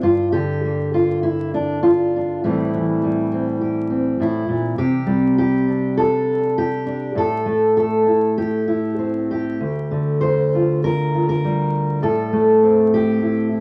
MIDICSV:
0, 0, Header, 1, 2, 480
1, 0, Start_track
1, 0, Tempo, 604230
1, 16, Time_signature, 4, 2, 24, 8
1, 1936, Tempo, 590551
1, 5776, Tempo, 612870
1, 8656, Tempo, 592885
1, 10894, End_track
2, 0, Start_track
2, 0, Title_t, "Steel-string acoustic guitar"
2, 0, Program_c, 0, 25
2, 15, Note_on_c, 0, 43, 69
2, 25, Note_on_c, 0, 65, 94
2, 253, Note_off_c, 0, 65, 0
2, 256, Note_on_c, 0, 67, 96
2, 262, Note_on_c, 0, 50, 57
2, 516, Note_on_c, 0, 58, 45
2, 740, Note_off_c, 0, 67, 0
2, 747, Note_on_c, 0, 65, 88
2, 974, Note_off_c, 0, 65, 0
2, 977, Note_on_c, 0, 64, 94
2, 1221, Note_off_c, 0, 64, 0
2, 1225, Note_on_c, 0, 62, 81
2, 1449, Note_off_c, 0, 62, 0
2, 1452, Note_on_c, 0, 65, 90
2, 1715, Note_on_c, 0, 62, 46
2, 1906, Note_off_c, 0, 43, 0
2, 1912, Note_off_c, 0, 58, 0
2, 1915, Note_off_c, 0, 62, 0
2, 1930, Note_off_c, 0, 65, 0
2, 1935, Note_off_c, 0, 50, 0
2, 1938, Note_on_c, 0, 64, 83
2, 1941, Note_on_c, 0, 45, 68
2, 1945, Note_on_c, 0, 52, 47
2, 1950, Note_on_c, 0, 55, 48
2, 1956, Note_on_c, 0, 60, 49
2, 2184, Note_off_c, 0, 52, 0
2, 2188, Note_on_c, 0, 52, 58
2, 2420, Note_off_c, 0, 55, 0
2, 2423, Note_on_c, 0, 55, 46
2, 2655, Note_off_c, 0, 60, 0
2, 2658, Note_on_c, 0, 60, 47
2, 2888, Note_off_c, 0, 64, 0
2, 2892, Note_on_c, 0, 67, 51
2, 3122, Note_off_c, 0, 60, 0
2, 3125, Note_on_c, 0, 60, 43
2, 3358, Note_off_c, 0, 45, 0
2, 3367, Note_on_c, 0, 45, 61
2, 3379, Note_off_c, 0, 67, 0
2, 3382, Note_on_c, 0, 64, 84
2, 3597, Note_off_c, 0, 45, 0
2, 3601, Note_on_c, 0, 46, 62
2, 3838, Note_off_c, 0, 46, 0
2, 3839, Note_off_c, 0, 64, 0
2, 3841, Note_on_c, 0, 48, 76
2, 3842, Note_on_c, 0, 67, 92
2, 4068, Note_off_c, 0, 52, 0
2, 4071, Note_off_c, 0, 55, 0
2, 4071, Note_on_c, 0, 55, 58
2, 4320, Note_off_c, 0, 67, 0
2, 4329, Note_on_c, 0, 67, 88
2, 4566, Note_off_c, 0, 60, 0
2, 4570, Note_on_c, 0, 62, 46
2, 4807, Note_off_c, 0, 67, 0
2, 4810, Note_on_c, 0, 69, 97
2, 5291, Note_off_c, 0, 69, 0
2, 5302, Note_on_c, 0, 67, 96
2, 5523, Note_off_c, 0, 62, 0
2, 5533, Note_on_c, 0, 62, 46
2, 5740, Note_off_c, 0, 48, 0
2, 5745, Note_off_c, 0, 62, 0
2, 5770, Note_on_c, 0, 45, 67
2, 5780, Note_off_c, 0, 67, 0
2, 5787, Note_on_c, 0, 69, 102
2, 5793, Note_off_c, 0, 55, 0
2, 6008, Note_on_c, 0, 57, 58
2, 6243, Note_off_c, 0, 69, 0
2, 6252, Note_on_c, 0, 69, 87
2, 6486, Note_on_c, 0, 64, 45
2, 6724, Note_off_c, 0, 69, 0
2, 6728, Note_on_c, 0, 67, 95
2, 6954, Note_off_c, 0, 64, 0
2, 6964, Note_on_c, 0, 64, 78
2, 7204, Note_on_c, 0, 60, 46
2, 7448, Note_off_c, 0, 67, 0
2, 7457, Note_on_c, 0, 67, 93
2, 7660, Note_off_c, 0, 57, 0
2, 7661, Note_off_c, 0, 60, 0
2, 7687, Note_off_c, 0, 45, 0
2, 7689, Note_on_c, 0, 38, 67
2, 7692, Note_off_c, 0, 64, 0
2, 7929, Note_on_c, 0, 50, 55
2, 8159, Note_off_c, 0, 67, 0
2, 8162, Note_on_c, 0, 72, 95
2, 8427, Note_on_c, 0, 65, 46
2, 8648, Note_off_c, 0, 72, 0
2, 8657, Note_on_c, 0, 70, 105
2, 8891, Note_off_c, 0, 65, 0
2, 8901, Note_on_c, 0, 65, 42
2, 9011, Note_off_c, 0, 70, 0
2, 9020, Note_on_c, 0, 70, 96
2, 9146, Note_on_c, 0, 55, 48
2, 9593, Note_off_c, 0, 65, 0
2, 9613, Note_on_c, 0, 45, 77
2, 9616, Note_off_c, 0, 70, 0
2, 9619, Note_off_c, 0, 50, 0
2, 9619, Note_on_c, 0, 69, 95
2, 9620, Note_off_c, 0, 38, 0
2, 9861, Note_on_c, 0, 57, 60
2, 10106, Note_off_c, 0, 55, 0
2, 10109, Note_on_c, 0, 60, 50
2, 10340, Note_off_c, 0, 69, 0
2, 10355, Note_on_c, 0, 67, 110
2, 10587, Note_on_c, 0, 64, 52
2, 10817, Note_off_c, 0, 64, 0
2, 10820, Note_on_c, 0, 64, 47
2, 10894, Note_off_c, 0, 45, 0
2, 10894, Note_off_c, 0, 57, 0
2, 10894, Note_off_c, 0, 60, 0
2, 10894, Note_off_c, 0, 64, 0
2, 10894, Note_off_c, 0, 67, 0
2, 10894, End_track
0, 0, End_of_file